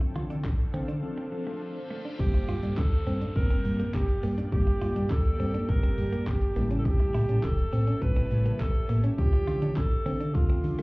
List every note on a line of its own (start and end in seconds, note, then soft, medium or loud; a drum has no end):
0.00 0.50 F3 loud
0.00 0.50 C4 medium
0.00 0.51 D4 medium
0.00 2.17 D4 medium
0.00 0.51 A4 loud
0.00 2.15 A4 medium
0.00 2.17 C5 medium
0.00 2.17 F5 medium
0.00 muted clean electric guitar stroke soft
0.00 shaker soft
0.15 0.34 D3 loud
0.15 0.26 F4 medium
0.15 closed hi-hat medium
0.15 shaker medium
0.30 0.40 D4 medium
0.30 shaker medium
0.44 0.64 A1 loud
0.44 muted clean electric guitar stroke soft
0.44 kick loud
0.44 snare medium
0.44 clap loud
0.44 closed hi-hat medium
0.44 shaker medium
0.59 shaker soft
0.74 0.93 D3 loud
0.74 0.84 C4 medium
0.74 closed hi-hat medium
0.74 shaker medium
0.88 0.98 D4 medium
0.88 shaker medium
1.03 1.18 F3 medium
1.03 1.18 C4 medium
1.03 1.18 D4 medium
1.03 1.18 A4 medium
1.03 reverse cymbal medium
1.18 1.28 C4 medium
1.32 1.77 F3 medium
1.32 1.78 C4 medium
1.32 1.78 D4 medium
1.32 1.78 A4 medium
1.32 muted clean electric guitar stroke medium
1.47 1.57 A3 medium
1.61 muted clean electric guitar stroke soft
1.90 2.00 A3 medium
2.05 2.15 D4 medium
2.19 2.38 G1 loud
2.19 2.80 D3 medium
2.19 2.80 G3 medium
2.19 2.80 A#3 medium
2.19 6.52 A#3 medium
2.19 2.79 G4 loud
2.19 9.14 G4 medium
2.19 2.80 G4 medium
2.19 6.52 D5 medium
2.19 4.50 G5 medium
2.19 kick loud
2.19 crash loud
2.19 downlifter medium
2.19 shaker medium
2.34 muted clean electric guitar stroke soft
2.34 closed hi-hat soft
2.34 shaker soft
2.48 2.58 G2 loud
2.48 2.59 F4 medium
2.48 open hi-hat medium
2.48 shaker medium
2.63 2.73 G2 loud
2.63 2.73 D4 medium
2.63 closed hi-hat medium
2.63 shaker medium
2.77 2.97 D2 medium
2.77 3.35 A4 loud
2.77 muted clean electric guitar stroke soft
2.77 kick loud
2.77 snare medium
2.77 clap loud
2.77 shaker medium
2.92 closed hi-hat soft
2.92 shaker soft
3.07 3.26 G2 loud
3.07 3.17 C4 medium
3.07 open hi-hat medium
3.07 shaker medium
3.21 3.31 D4 medium
3.21 closed hi-hat medium
3.21 shaker medium
3.36 3.45 G1 loud
3.36 3.96 D3 medium
3.36 3.97 G3 medium
3.36 3.97 A#3 medium
3.36 3.97 C4 medium
3.36 3.90 A#4 loud
3.36 kick loud
3.36 shaker medium
3.50 3.60 G1 loud
3.50 3.60 C4 medium
3.50 closed hi-hat medium
3.50 shaker medium
3.65 3.84 G2 loud
3.65 muted clean electric guitar stroke soft
3.65 open hi-hat medium
3.65 shaker medium
3.80 3.90 A#3 medium
3.80 closed hi-hat medium
3.80 shaker medium
3.94 4.13 G1 loud
3.94 4.35 G4 loud
3.94 muted clean electric guitar stroke soft
3.94 kick loud
3.94 snare medium
3.94 clap loud
3.94 shaker medium
4.09 closed hi-hat medium
4.09 shaker medium
4.23 4.42 G2 loud
4.23 4.33 A#3 medium
4.23 open hi-hat medium
4.23 shaker medium
4.38 4.48 D4 medium
4.38 closed hi-hat medium
4.38 shaker medium
4.52 4.71 G1 loud
4.52 5.13 D3 medium
4.52 5.13 G3 medium
4.52 5.13 A#3 medium
4.52 5.12 G4 loud
4.52 5.13 G4 medium
4.52 9.14 A5 medium
4.52 kick loud
4.52 shaker medium
4.67 muted clean electric guitar stroke soft
4.67 closed hi-hat soft
4.67 shaker soft
4.81 4.91 G2 loud
4.81 4.92 F4 medium
4.81 open hi-hat medium
4.81 shaker medium
4.96 5.05 G2 loud
4.96 5.06 D4 medium
4.96 closed hi-hat medium
4.96 shaker medium
5.10 5.30 D2 medium
5.10 5.70 A4 loud
5.10 muted clean electric guitar stroke soft
5.10 kick loud
5.10 snare medium
5.10 clap loud
5.10 shaker medium
5.25 closed hi-hat soft
5.25 shaker soft
5.40 5.59 G2 loud
5.40 5.50 C4 medium
5.40 open hi-hat medium
5.40 shaker medium
5.54 5.64 D4 medium
5.54 closed hi-hat medium
5.54 shaker medium
5.69 5.78 G1 loud
5.69 6.30 D3 medium
5.69 6.30 G3 medium
5.69 6.30 A#3 medium
5.69 6.30 G4 medium
5.69 6.29 A#4 loud
5.69 kick loud
5.69 shaker medium
5.83 5.93 G1 loud
5.83 5.93 C4 medium
5.83 closed hi-hat medium
5.83 shaker medium
5.98 6.17 G2 loud
5.98 muted clean electric guitar stroke soft
5.98 open hi-hat medium
5.98 shaker medium
6.13 6.23 A#3 medium
6.13 closed hi-hat medium
6.13 shaker medium
6.27 6.46 G1 loud
6.27 6.71 G4 loud
6.27 muted clean electric guitar stroke soft
6.27 kick loud
6.27 snare medium
6.27 clap loud
6.27 shaker medium
6.42 closed hi-hat medium
6.42 shaker medium
6.56 6.94 A1 loud
6.56 7.49 C#3 medium
6.56 7.49 G3 medium
6.56 7.50 A3 medium
6.56 6.66 A#3 medium
6.56 7.50 E4 medium
6.56 9.16 C#5 medium
6.56 9.16 E5 medium
6.56 open hi-hat medium
6.56 shaker medium
6.71 6.81 C#4 medium
6.71 closed hi-hat medium
6.71 shaker medium
6.78 6.87 A4 medium
6.85 7.45 G4 loud
6.85 kick loud
6.85 shaker medium
7.00 muted clean electric guitar stroke soft
7.00 closed hi-hat soft
7.00 shaker soft
7.14 7.24 A2 loud
7.14 7.25 E4 medium
7.14 open hi-hat medium
7.14 shaker medium
7.29 7.38 A2 loud
7.29 7.39 C#4 medium
7.29 closed hi-hat medium
7.29 shaker medium
7.43 7.63 E1 medium
7.43 8.03 A4 loud
7.43 muted clean electric guitar stroke soft
7.43 kick loud
7.43 snare medium
7.43 clap loud
7.43 shaker medium
7.58 closed hi-hat soft
7.58 shaker soft
7.73 7.92 A2 loud
7.73 7.83 C4 medium
7.73 open hi-hat medium
7.73 shaker medium
7.87 7.97 C#4 medium
7.87 closed hi-hat medium
7.87 shaker medium
8.02 8.11 A1 loud
8.02 8.63 C#3 medium
8.02 8.63 G3 medium
8.02 8.63 A3 medium
8.02 8.63 E4 medium
8.02 8.62 B4 loud
8.02 kick loud
8.02 shaker medium
8.16 8.26 A1 loud
8.16 8.26 C4 medium
8.16 closed hi-hat medium
8.16 shaker medium
8.31 8.50 A2 loud
8.31 muted clean electric guitar stroke medium
8.31 open hi-hat medium
8.31 shaker medium
8.46 8.56 A#3 medium
8.46 closed hi-hat medium
8.46 shaker medium
8.60 8.79 A1 loud
8.60 9.04 A4 loud
8.60 muted clean electric guitar stroke soft
8.60 kick loud
8.60 snare medium
8.60 clap loud
8.60 shaker medium
8.75 closed hi-hat medium
8.75 shaker medium
8.89 9.08 A2 loud
8.89 8.99 A#3 medium
8.89 open hi-hat medium
8.89 shaker medium
9.04 9.14 C#4 medium
9.04 closed hi-hat medium
9.04 shaker medium
9.18 9.37 D2 loud
9.18 9.79 D3 medium
9.18 9.79 F3 medium
9.18 9.79 A3 medium
9.18 9.79 F4 medium
9.18 9.78 G4 loud
9.18 10.82 A4 medium
9.18 10.82 D5 medium
9.18 10.82 F5 medium
9.18 10.82 D6 medium
9.18 kick loud
9.18 shaker medium
9.33 muted clean electric guitar stroke soft
9.33 closed hi-hat soft
9.33 shaker soft
9.47 9.57 D3 loud
9.47 9.58 F4 medium
9.47 open hi-hat medium
9.47 shaker medium
9.62 9.72 D3 loud
9.62 9.72 D4 medium
9.62 closed hi-hat medium
9.62 shaker medium
9.76 9.96 A1 medium
9.76 10.36 A4 loud
9.76 muted clean electric guitar stroke soft
9.76 kick loud
9.76 snare medium
9.76 clap loud
9.76 shaker medium
9.91 closed hi-hat soft
9.91 shaker soft
10.06 10.25 D3 loud
10.06 10.16 C4 medium
10.06 open hi-hat medium
10.06 shaker medium
10.20 10.30 D4 medium
10.20 closed hi-hat medium
10.20 shaker medium
10.35 10.44 D2 loud
10.35 10.82 D3 medium
10.35 10.82 F3 medium
10.35 10.82 A3 medium
10.35 10.82 F4 medium
10.35 kick loud
10.35 shaker medium
10.49 10.59 D2 loud
10.49 10.60 C4 medium
10.49 closed hi-hat medium
10.49 shaker medium
10.64 10.82 D3 loud
10.64 muted clean electric guitar stroke medium
10.64 open hi-hat medium
10.64 shaker medium
10.79 10.82 A3 medium
10.79 closed hi-hat medium
10.79 shaker medium